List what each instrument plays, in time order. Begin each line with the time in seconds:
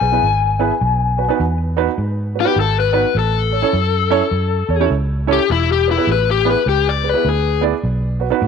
Already playing: lead electric guitar G#5
0.01 fingered electric bass B1, grand piano G#4 B4
0.12 grand piano B3 E4 G#4 B4
0.22 fingered electric bass G#1
0.59 grand piano B3 E4 G#4 B4
0.81 fingered electric bass B1
1.18 grand piano F#4 B4
1.29 grand piano B3 D#4 F#4 B4
1.40 fingered electric bass E2
1.77 grand piano B3 D#4 F#4 B4
1.98 fingered electric bass G#2
2.35 grand piano F#4 B4
2.41 grand piano B3, lead electric guitar G4
2.45 grand piano D#4 F#4 B4
2.56 fingered electric bass G#1
2.60 lead electric guitar A4
2.80 lead electric guitar B4
2.93 grand piano B3 D#4 F#4 B4
3.15 fingered electric bass A1, lead electric guitar A4
3.51 grand piano A4 C#5
3.62 grand piano C#4 E4 A4 C#5
3.73 fingered electric bass F#2
4.10 grand piano C#4 E4 A4 C#5
4.31 fingered electric bass F#2
4.68 fingered electric bass E2, grand piano A4 C#5
4.80 grand piano C#4 E4 A4 C#5
4.90 fingered electric bass C#2
5.27 grand piano C#4 E4 A4 C#5
5.32 lead electric guitar G4
5.50 fingered electric bass E1, lead electric guitar E4
5.72 lead electric guitar G4
5.86 grand piano G#4 B4
5.91 lead electric guitar E4
5.97 grand piano B3 E4 G#4 B4
6.07 fingered electric bass A1
6.12 lead electric guitar B4
6.31 lead electric guitar G4
6.45 grand piano B3 E4 G#4 B4
6.50 lead electric guitar B4
6.66 fingered electric bass C#2, lead electric guitar G4
6.89 lead electric guitar D5
7.03 grand piano G#4 B4
7.09 lead electric guitar B4
7.14 grand piano B3 E4 G#4 B4
7.25 fingered electric bass D2
7.29 lead electric guitar G#4
7.61 grand piano B3 E4 G#4 D5
7.84 fingered electric bass B1
8.20 grand piano F#4 B4
8.30 grand piano B3 D#4 F#4 B4
8.42 fingered electric bass A2